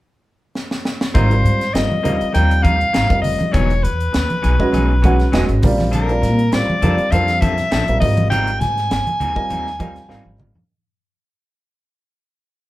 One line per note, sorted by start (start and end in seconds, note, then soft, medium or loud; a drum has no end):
0.55 snare medium
0.71 snare medium
0.85 snare medium
1.01 snare medium
1.14 1.46 G#1 medium
1.14 1.24 G3 medium
1.14 1.33 G3 medium
1.14 1.24 C4 medium
1.14 1.33 C4 medium
1.14 1.33 D#4 medium
1.14 1.25 F4 medium
1.14 1.25 A#4 medium
1.14 1.33 A#4 medium
1.14 1.75 C5 medium
1.14 1.25 D#5 medium
1.14 kick medium
1.14 closed hi-hat medium
1.14 low conga medium
1.30 1.59 G3 medium
1.30 1.60 C4 medium
1.30 1.60 F4 medium
1.30 1.60 A#4 medium
1.30 1.60 C5 medium
1.30 closed hi-hat soft
1.44 1.68 G#2 medium
1.44 muted clean electric guitar stroke soft
1.44 closed hi-hat medium
1.61 snare soft
1.61 closed hi-hat soft
1.74 1.87 G1 medium
1.74 1.95 G3 medium
1.74 1.95 C4 medium
1.74 1.95 F4 soft
1.74 1.95 A#4 medium
1.74 2.34 D#5 medium
1.74 1.95 D#5 medium
1.74 muted clean electric guitar stroke soft
1.74 snare medium
1.74 closed hi-hat medium
1.90 muted clean electric guitar stroke soft
1.90 high conga medium
2.03 2.17 D#2 medium
2.03 2.19 G3 medium
2.03 2.24 G3 medium
2.03 2.18 C4 medium
2.03 2.24 C4 medium
2.03 2.18 D#4 medium
2.03 2.24 F4 medium
2.03 2.18 A#4 medium
2.03 2.24 A#4 medium
2.03 2.25 D#5 medium
2.03 closed hi-hat medium
2.03 low conga medium
2.19 muted clean electric guitar stroke soft
2.19 muted upright bass stroke soft
2.19 closed hi-hat soft
2.33 2.82 D#2 medium
2.33 2.52 G3 medium
2.33 2.83 G3 medium
2.33 2.52 C4 medium
2.33 2.84 C4 medium
2.33 2.53 D#4 medium
2.33 2.84 F4 medium
2.33 2.84 A#4 medium
2.33 2.53 A#4 medium
2.33 2.84 D#5 medium
2.33 2.65 G5 medium
2.33 closed hi-hat medium
2.33 high conga medium
2.51 closed hi-hat soft
2.62 2.79 G3 soft
2.62 2.78 C4 medium
2.62 2.78 D#4 medium
2.62 2.78 A#4 medium
2.62 3.21 F5 medium
2.62 kick medium
2.62 closed hi-hat soft
2.62 high conga medium
2.79 muted clean electric guitar stroke soft
2.79 closed hi-hat soft
2.93 3.07 G#1 medium
2.93 3.09 G3 medium
2.93 3.08 C4 medium
2.93 3.08 D#4 medium
2.93 3.08 A#4 medium
2.93 snare medium
2.93 closed hi-hat medium
3.09 3.34 F1 medium
3.09 3.54 G3 medium
3.09 3.54 C4 medium
3.09 3.54 F4 soft
3.09 3.54 A#4 medium
3.09 3.55 D#5 medium
3.09 muted clean electric guitar stroke soft
3.09 kick medium
3.09 closed hi-hat soft
3.22 3.54 D#5 medium
3.22 muted clean electric guitar stroke soft
3.22 open hi-hat medium
3.22 low conga medium
3.39 muted clean electric guitar stroke soft
3.39 closed hi-hat soft
3.39 high conga medium
3.52 3.85 E1 loud
3.52 3.71 F#3 medium
3.52 3.72 B3 medium
3.52 3.72 D#4 medium
3.52 3.72 G#4 medium
3.52 3.85 C#5 medium
3.52 kick medium
3.52 closed hi-hat medium
3.52 low conga soft
3.70 closed hi-hat soft
3.82 4.08 E2 medium
3.82 5.63 B4 medium
3.82 muted clean electric guitar stroke soft
3.82 closed hi-hat medium
4.00 closed hi-hat soft
4.12 4.27 D#2 medium
4.12 muted clean electric guitar stroke soft
4.12 snare medium
4.12 closed hi-hat medium
4.29 muted clean electric guitar stroke soft
4.29 muted upright bass stroke soft
4.29 closed hi-hat soft
4.29 high conga medium
4.42 4.57 B1 medium
4.42 4.59 F#3 medium
4.42 4.57 B3 medium
4.42 4.57 D#4 medium
4.42 4.57 G#4 medium
4.42 closed hi-hat medium
4.58 4.89 G#3 medium
4.58 4.89 C#4 medium
4.58 4.89 F#4 medium
4.58 4.89 B4 medium
4.58 4.89 D#5 medium
4.58 muted clean electric guitar stroke soft
4.58 muted upright bass stroke soft
4.58 kick medium
4.72 5.21 B1 medium
4.72 4.92 F#3 medium
4.72 4.92 B3 medium
4.72 4.92 D#4 medium
4.72 4.92 G#4 medium
4.72 closed hi-hat medium
4.72 high conga soft
5.02 5.19 F#3 medium
5.02 5.24 G#3 medium
5.02 5.18 B3 medium
5.02 5.24 C#4 medium
5.02 5.18 D#4 medium
5.02 5.24 F#4 medium
5.02 5.17 G#4 medium
5.02 5.24 B4 medium
5.02 5.25 F#5 medium
5.02 kick medium
5.02 closed hi-hat soft
5.02 high conga medium
5.18 muted clean electric guitar stroke soft
5.18 snare soft
5.18 closed hi-hat soft
5.32 5.46 E1 medium
5.32 5.49 F#3 medium
5.32 5.64 G#3 medium
5.32 5.48 B3 medium
5.32 5.64 C#4 medium
5.32 5.48 D#4 medium
5.32 5.64 F#4 medium
5.32 5.47 G#4 medium
5.32 5.64 B4 medium
5.32 5.64 D#5 medium
5.32 snare medium
5.32 closed hi-hat medium
5.48 5.60 G#1 medium
5.48 muted clean electric guitar stroke soft
5.48 closed hi-hat soft
5.62 6.24 A#1 medium
5.62 6.00 G3 medium
5.62 6.00 C4 medium
5.62 6.00 F4 medium
5.62 6.00 A#4 medium
5.62 6.00 D5 medium
5.62 muted clean electric guitar stroke soft
5.62 kick medium
5.62 open hi-hat medium
5.62 low conga medium
5.78 muted clean electric guitar stroke soft
5.78 snare soft
5.78 high conga medium
5.91 6.11 F3 medium
5.91 6.11 C4 medium
5.91 6.11 D4 medium
5.91 6.11 A4 medium
5.91 6.55 A#4 medium
5.91 closed hi-hat medium
5.91 low conga medium
6.09 6.38 G3 medium
6.09 6.38 C4 medium
6.09 6.39 F4 medium
6.09 6.39 A#4 medium
6.09 6.39 D5 medium
6.09 closed hi-hat soft
6.22 6.47 A#2 medium
6.22 muted clean electric guitar stroke soft
6.22 snare soft
6.22 closed hi-hat medium
6.39 closed hi-hat soft
6.51 6.65 A1 medium
6.51 6.73 G3 medium
6.51 6.74 C4 medium
6.51 6.74 F4 medium
6.51 6.74 A#4 medium
6.51 6.74 C5 medium
6.51 7.13 D5 medium
6.51 muted clean electric guitar stroke soft
6.51 snare medium
6.51 closed hi-hat medium
6.67 muted clean electric guitar stroke soft
6.67 muted upright bass stroke soft
6.67 high conga medium
6.82 6.95 F2 medium
6.82 6.98 F3 medium
6.82 7.03 G3 medium
6.82 6.97 C4 medium
6.82 7.03 C4 medium
6.82 6.97 D4 medium
6.82 7.03 F4 medium
6.82 6.97 A4 medium
6.82 7.03 A#4 medium
6.82 7.03 D5 medium
6.82 closed hi-hat medium
6.82 low conga medium
6.98 muted clean electric guitar stroke soft
6.98 muted upright bass stroke soft
6.98 closed hi-hat soft
7.10 7.60 F2 medium
7.10 7.30 F3 medium
7.10 7.62 G3 medium
7.10 7.31 C4 medium
7.10 7.62 C4 medium
7.10 7.31 D4 medium
7.10 7.62 F4 medium
7.10 7.31 A4 medium
7.10 7.62 A#4 medium
7.10 7.63 C5 medium
7.10 7.42 F5 medium
7.10 closed hi-hat medium
7.10 high conga medium
7.28 snare soft
7.28 closed hi-hat soft
7.41 7.57 F3 medium
7.41 7.57 C4 medium
7.41 7.57 D4 medium
7.41 7.56 A4 medium
7.41 7.99 E5 medium
7.41 kick medium
7.41 closed hi-hat medium
7.41 high conga medium
7.58 muted clean electric guitar stroke soft
7.58 snare soft
7.58 closed hi-hat soft
7.71 7.85 A#1 medium
7.71 7.87 F3 medium
7.71 7.86 C4 medium
7.71 7.86 D4 medium
7.71 7.85 A4 medium
7.71 snare medium
7.71 closed hi-hat medium
7.87 7.99 A#1 medium
7.87 8.01 G3 medium
7.87 8.01 C4 medium
7.87 8.02 F4 soft
7.87 8.02 A#4 medium
7.87 8.03 E5 medium
7.87 muted clean electric guitar stroke soft
7.87 closed hi-hat soft
8.00 8.62 G#1 medium
8.00 8.98 G3 medium
8.00 8.98 C4 medium
8.00 8.98 F4 medium
8.00 8.98 A#4 medium
8.00 8.29 D#5 medium
8.00 8.98 D#5 medium
8.00 muted clean electric guitar stroke soft
8.00 kick medium
8.00 open hi-hat medium
8.00 low conga medium
8.17 muted clean electric guitar stroke soft
8.17 closed hi-hat soft
8.17 high conga medium
8.30 8.49 G3 medium
8.30 8.50 C4 medium
8.30 8.50 D#4 medium
8.30 8.50 A#4 medium
8.30 8.61 G5 medium
8.30 closed hi-hat medium
8.30 low conga medium
8.47 closed hi-hat soft
8.60 8.85 G#2 medium
8.60 10.39 G#5 medium
8.60 muted clean electric guitar stroke soft
8.60 snare soft
8.60 closed hi-hat medium
8.60 low conga medium
8.77 snare soft
8.77 closed hi-hat soft
8.90 9.03 G1 medium
8.90 muted clean electric guitar stroke soft
8.90 snare loud
8.90 closed hi-hat medium
9.06 muted clean electric guitar stroke soft
9.06 muted upright bass stroke soft
9.06 closed hi-hat soft
9.06 high conga medium
9.20 9.33 D#2 medium
9.20 9.36 G3 medium
9.20 9.35 C4 medium
9.20 9.34 D#4 medium
9.20 9.34 A#4 medium
9.20 closed hi-hat medium
9.20 low conga medium
9.35 9.65 G3 medium
9.35 9.65 C4 medium
9.35 9.65 F4 medium
9.35 9.65 A#4 medium
9.35 9.65 D#5 medium
9.35 muted clean electric guitar stroke soft
9.35 muted upright bass stroke soft
9.35 kick medium
9.50 9.98 D#2 medium
9.50 9.69 G3 medium
9.50 9.69 C4 medium
9.50 9.69 D#4 medium
9.50 9.69 A#4 medium
9.50 closed hi-hat medium
9.50 high conga medium
9.67 snare soft
9.79 9.95 G3 medium
9.79 10.00 G3 medium
9.79 9.95 C4 medium
9.79 10.00 C4 medium
9.79 9.94 D#4 medium
9.79 10.00 F4 medium
9.79 10.00 A#4 medium
9.79 9.94 A#4 medium
9.79 10.00 D#5 medium
9.79 10.08 G5 medium
9.79 kick medium
9.79 closed hi-hat soft
9.79 high conga medium
9.96 muted clean electric guitar stroke soft
9.96 snare soft
9.96 closed hi-hat soft
10.08 10.22 G#1 medium
10.08 10.49 G3 medium
10.08 10.25 G3 medium
10.08 10.49 C4 medium
10.08 10.25 C4 medium
10.08 10.25 D#4 medium
10.08 10.49 F4 medium
10.08 10.49 A#4 medium
10.08 10.25 A#4 medium
10.08 10.49 F5 medium
10.08 snare soft
10.25 10.49 G#1 medium
10.25 muted clean electric guitar stroke soft
10.25 high conga medium
10.38 10.66 D#5 medium
10.38 muted clean electric guitar stroke soft
10.38 mid tom medium
10.38 low conga medium
10.55 muted clean electric guitar stroke soft
10.55 floor tom medium
10.55 high conga medium